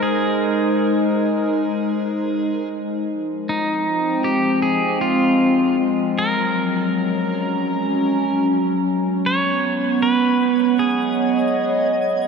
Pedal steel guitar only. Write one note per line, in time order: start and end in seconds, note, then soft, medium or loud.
0.03 2.68 G#4 medium
3.49 4.29 D#4 medium
4.24 4.62 G4 medium
4.62 5.01 G#4 medium
5.01 5.75 F4 medium
6.18 8.45 A#4 medium
9.26 10.02 C#5 medium
10.02 10.82 B4 medium
10.79 11.91 G#4 medium